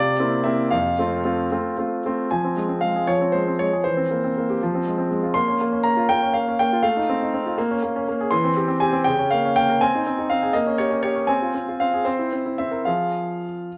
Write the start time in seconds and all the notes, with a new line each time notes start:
Already playing: C3 D5
0.19 A#3 C4 E4
0.44 A#3 C4 E4 E5
0.71 F2 F5
0.99 A3 C4 F4
1.24 A3 C4 F4
1.51 A3 C4 F4
1.78 A3 C4 F4
2.06 A3 C4 F4
2.31 F3 G#5
2.44 C4
2.56 G#3
2.69 C4
2.81 G#3 F5
2.96 G#4
3.07 F3 C#5
3.21 C4
3.32 G#3 C5
3.47 C4
3.59 G#3 C#5
3.73 G#4
3.84 E3 C5
3.97 C4
4.11 A#3
4.24 C4
4.37 A#3
4.50 G4
4.63 F3
4.75 C4
4.87 G#3
4.98 C4
5.11 G#3
5.23 F4
5.34 A#3 C6
5.48 C#4
5.61 A#3
5.72 C#4
5.83 A#3 A#5
5.97 F4
6.09 A#3 G5
6.23 C#4
6.33 A#3 F5
6.48 C#4
6.59 A#3 G5
6.73 F4
6.83 A3 F5
6.97 D#4
7.09 C4
7.23 D#4
7.34 C4
7.46 F4
7.58 A#3
7.71 C#4
7.83 A#3
7.96 C#4
8.09 A#3
8.21 G#4
8.31 E3 C6
8.44 C4
8.57 G4
8.68 C4
8.80 G4 G#5
8.93 C4
9.04 C#3 G5
9.19 C#4
9.31 A#3 F5
9.45 C#4
9.56 A#3 G5
9.70 A#4
9.81 C4 G#5
9.95 D#4
10.07 C4
10.19 D#4
10.30 C4 F5
10.43 G#4
10.53 A#3 D#5
10.67 C#4
10.78 G4 C#5
10.90 C#4
11.03 G4 C#5
11.16 C#4
11.27 C4 G#5
11.42 F4
11.55 C4
11.69 F4
11.80 C4 F5
11.94 G#4
12.05 C4 C5
12.19 E4
12.33 C4
12.46 E4
12.58 C4 E5
12.71 A#4
12.85 F3 F4 G#4 F5